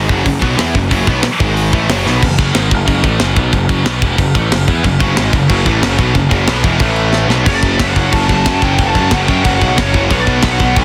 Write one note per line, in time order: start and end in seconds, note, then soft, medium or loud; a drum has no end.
0.08 0.25 F#1 medium
0.08 0.23 F#2 medium
0.08 0.24 C#3 medium
0.08 0.26 F#3 loud
0.08 kick loud
0.24 0.41 F#1 medium
0.24 0.38 F#2 medium
0.24 0.39 C#3 medium
0.24 kick loud
0.24 open hi-hat medium
0.39 0.57 B1 medium
0.39 0.56 B2 loud
0.39 0.57 F#3 medium
0.39 0.56 B3 loud
0.39 kick loud
0.57 0.73 E2 medium
0.57 0.74 E3 medium
0.57 0.74 B3 loud
0.57 0.74 E4 loud
0.57 snare loud
0.57 open hi-hat medium
0.74 0.90 F#1 medium
0.74 0.88 F#2 medium
0.74 0.88 C#3 medium
0.74 kick medium
0.89 1.07 F#1 medium
0.89 1.06 F#2 medium
0.89 1.05 C#3 loud
0.89 1.06 F#3 loud
0.89 kick medium
0.89 open hi-hat medium
1.06 1.23 B1 medium
1.06 1.22 B2 medium
1.06 1.23 F#3 loud
1.06 1.23 B3 loud
1.06 kick loud
1.23 snare loud
1.23 open hi-hat medium
1.40 1.71 G#1 loud
1.40 1.72 G#2 medium
1.40 1.72 D#3 loud
1.40 1.73 G#3 loud
1.40 kick loud
1.57 open hi-hat medium
1.73 1.88 A1 medium
1.73 1.89 A2 loud
1.73 1.89 E3 loud
1.73 1.89 A3 loud
1.73 kick medium
1.88 2.04 F#1 medium
1.88 2.05 F#2 medium
1.88 2.04 C#3 medium
1.88 2.04 F#3 loud
1.88 snare loud
1.88 open hi-hat medium
2.05 2.21 B1 medium
2.05 2.21 B2 medium
2.05 2.21 F#3 medium
2.05 2.22 B3 loud
2.05 snare medium
2.22 2.37 F#1 medium
2.22 2.35 F#2 medium
2.22 2.35 C#3 medium
2.22 kick medium
2.22 crash loud
2.22 crash medium
2.38 2.54 F#1 loud
2.38 2.53 F#2 medium
2.38 2.54 C#3 loud
2.38 2.54 F#3 loud
2.38 kick loud
2.38 crash medium
2.54 2.70 G#1 loud
2.54 2.70 G#2 loud
2.54 2.70 D#3 loud
2.54 2.70 G#3 loud
2.54 snare loud
2.54 crash medium
2.70 2.86 F#1 medium
2.70 2.83 F#2 medium
2.70 2.84 C#3 medium
2.70 kick loud
2.70 crash medium
2.86 3.03 F#1 medium
2.86 3.02 F#2 loud
2.86 3.02 C#3 loud
2.86 3.02 F#3 loud
2.86 kick loud
2.86 crash medium
3.02 3.19 A1 loud
3.02 3.18 A2 medium
3.02 3.19 E3 loud
3.02 3.19 A3 loud
3.02 kick loud
3.02 crash medium
3.18 3.35 F#1 loud
3.18 3.35 F#2 medium
3.18 3.34 C#3 loud
3.18 3.34 F#3 loud
3.18 snare loud
3.18 crash medium
3.35 3.52 B1 medium
3.35 3.51 B2 medium
3.35 3.51 F#3 medium
3.35 3.52 B3 loud
3.35 kick loud
3.35 crash medium
3.53 3.68 F#1 medium
3.53 3.66 F#2 medium
3.53 3.66 C#3 medium
3.53 kick medium
3.53 crash medium
3.69 3.84 F#1 medium
3.69 3.85 F#2 medium
3.69 3.84 C#3 medium
3.69 3.84 F#3 loud
3.69 kick loud
3.69 crash medium
3.84 4.00 B1 medium
3.84 4.00 B2 medium
3.84 4.01 F#3 loud
3.84 4.01 B3 loud
3.84 snare loud
3.84 crash medium
4.01 4.17 E1 loud
4.01 4.17 E2 loud
4.01 4.17 B2 loud
4.01 4.18 E3 loud
4.01 kick loud
4.01 crash medium
4.18 4.33 F#1 medium
4.18 4.31 F#2 medium
4.18 4.31 C#3 medium
4.18 kick loud
4.18 crash medium
4.35 4.50 A1 loud
4.35 4.50 A2 loud
4.35 4.50 E3 loud
4.35 4.51 A3 loud
4.35 kick loud
4.35 crash medium
4.50 4.66 F#1 medium
4.50 4.65 F#2 medium
4.50 4.65 C#3 medium
4.50 snare loud
4.50 crash loud
4.68 4.83 E2 loud
4.68 4.83 E3 medium
4.68 4.84 B3 medium
4.68 4.84 E4 loud
4.68 kick loud
4.68 crash medium
4.84 4.99 F#1 medium
4.84 4.97 F#2 medium
4.84 4.97 C#3 medium
4.84 kick medium
4.84 crash medium
5.00 5.15 F#1 loud
5.00 5.16 F#2 medium
5.00 5.16 C#3 loud
5.00 5.16 F#3 medium
5.00 kick loud
5.00 crash medium
5.17 5.32 G#1 medium
5.17 5.32 G#2 loud
5.17 5.33 D#3 loud
5.17 5.33 G#3 loud
5.17 snare loud
5.17 crash medium
5.33 5.48 F#1 medium
5.33 5.46 F#2 medium
5.33 5.46 C#3 medium
5.33 kick loud
5.33 crash medium
5.49 5.65 F#1 loud
5.49 5.65 F#2 medium
5.49 5.65 C#3 loud
5.49 5.65 F#3 loud
5.49 kick loud
5.49 crash medium
5.66 5.81 A1 loud
5.66 5.81 A2 loud
5.66 5.82 E3 loud
5.66 5.82 A3 loud
5.66 kick loud
5.66 crash medium
5.81 5.97 F#1 loud
5.81 5.97 F#2 loud
5.81 5.97 C#3 loud
5.81 5.96 F#3 loud
5.81 snare loud
5.81 crash medium
5.97 6.14 B1 loud
5.97 6.13 B2 medium
5.97 6.14 F#3 medium
5.97 6.14 B3 loud
5.97 kick loud
5.97 crash medium
6.13 6.30 F#1 medium
6.13 6.27 F#2 medium
6.13 6.27 C#3 medium
6.13 kick medium
6.13 crash medium
6.29 6.47 F#1 loud
6.29 6.46 F#2 medium
6.29 6.46 C#3 medium
6.29 6.47 F#3 loud
6.29 kick loud
6.29 crash medium
6.47 6.63 B1 loud
6.47 6.63 B2 loud
6.47 6.64 F#3 loud
6.47 6.64 B3 loud
6.47 snare loud
6.47 crash medium
6.64 6.79 E1 loud
6.64 6.80 E2 loud
6.64 6.79 B2 loud
6.64 6.79 E3 loud
6.64 kick loud
6.64 crash medium
6.79 7.26 A1 medium
6.79 7.29 A2 loud
6.79 7.29 E3 loud
6.79 7.30 A3 loud
6.79 kick loud
6.79 crash medium
6.96 crash medium
7.13 snare medium
7.28 7.44 B1 medium
7.28 7.45 B2 medium
7.28 7.46 F#3 medium
7.28 7.46 B3 loud
7.28 snare medium
7.45 7.76 F#1 loud
7.45 7.65 F#2 loud
7.45 7.63 C#3 loud
7.45 7.63 F#3 loud
7.45 7.54 C#5 medium
7.45 kick loud
7.45 crash loud
7.45 crash medium
7.54 7.80 D5 medium
7.62 7.80 F#2 medium
7.62 7.80 C#3 medium
7.62 7.81 F#3 medium
7.62 kick medium
7.62 crash medium
7.78 7.94 F#1 medium
7.78 7.97 F#2 loud
7.78 7.95 C#3 loud
7.78 7.96 F#3 loud
7.78 7.87 E5 medium
7.78 kick loud
7.78 snare loud
7.78 crash medium
7.87 8.13 F#5 medium
7.96 8.11 F#1 loud
7.96 8.11 F#2 medium
7.96 8.12 C#3 medium
7.96 8.13 F#3 loud
7.96 kick medium
7.96 crash medium
8.12 8.28 F#1 loud
8.12 8.30 F#2 medium
8.12 8.29 C#3 medium
8.12 8.29 F#3 medium
8.12 8.63 A5 loud
8.12 kick loud
8.12 crash medium
8.29 8.44 F#1 medium
8.29 8.44 F#2 medium
8.29 8.45 C#3 medium
8.29 8.46 F#3 loud
8.29 kick medium
8.29 crash medium
8.45 8.62 F#2 loud
8.45 8.61 F#2 medium
8.45 8.61 C#3 loud
8.45 8.62 F#3 loud
8.45 kick loud
8.45 snare loud
8.45 crash medium
8.62 8.77 F#1 medium
8.62 8.77 F#2 medium
8.62 8.78 C#3 medium
8.62 8.80 F#3 medium
8.62 8.87 G5 loud
8.62 kick medium
8.62 crash medium
8.78 8.94 F#1 loud
8.78 8.96 F#2 loud
8.78 8.95 C#3 loud
8.78 8.96 F#3 loud
8.78 kick loud
8.78 crash medium
8.87 9.10 A5 loud
8.95 9.10 F#2 loud
8.95 9.10 F#2 medium
8.95 9.11 C#3 medium
8.95 9.12 F#3 loud
8.95 kick medium
8.95 crash medium
9.11 9.27 F#1 medium
9.11 9.28 F#2 loud
9.11 9.27 C#3 loud
9.11 9.27 F#3 loud
9.11 9.21 F#5 medium
9.11 kick loud
9.11 snare loud
9.11 crash medium
9.21 9.43 G5 loud
9.28 9.43 F#2 loud
9.28 9.43 F#2 medium
9.28 9.43 C#3 medium
9.28 9.44 F#3 loud
9.28 kick loud
9.28 crash medium
9.43 9.60 F#1 loud
9.43 9.60 F#2 medium
9.43 9.59 C#3 medium
9.43 9.58 F#3 loud
9.43 9.51 F#5 loud
9.43 kick loud
9.43 crash medium
9.53 9.78 F#5 medium
9.59 9.76 B1 medium
9.59 9.75 F#2 medium
9.59 9.76 C#3 medium
9.59 9.77 F#3 loud
9.59 kick medium
9.59 crash medium
9.76 10.08 F#1 medium
9.76 9.92 F#2 loud
9.76 9.92 C#3 loud
9.76 9.92 F#3 loud
9.76 10.00 C#5 medium
9.76 kick loud
9.76 snare loud
9.76 crash loud
9.93 10.09 F#2 medium
9.93 10.09 C#3 medium
9.93 10.08 F#3 loud
9.93 kick medium
9.93 crash medium
10.09 10.41 B1 medium
10.09 10.25 B2 loud
10.09 10.25 F#3 loud
10.09 10.25 B3 loud
10.09 10.19 C#5 medium
10.09 kick loud
10.09 crash medium
10.20 10.42 D5 medium
10.25 10.42 B2 medium
10.25 10.42 F#3 medium
10.25 10.43 B3 medium
10.25 kick medium
10.25 crash medium
10.43 10.59 B1 medium
10.43 10.58 B2 loud
10.43 10.58 F#3 loud
10.43 10.58 B3 loud
10.43 10.51 E5 loud
10.43 kick loud
10.43 snare loud
10.43 crash loud
10.51 10.77 F#5 loud
10.59 10.75 B1 loud
10.59 10.74 B2 medium
10.59 10.75 F#3 medium
10.59 10.76 B3 loud
10.59 kick medium
10.59 crash medium
10.75 10.85 B1 loud
10.75 10.85 B2 medium
10.75 10.85 F#3 loud
10.75 10.85 B3 loud
10.75 10.85 A5 loud
10.75 kick loud
10.75 crash medium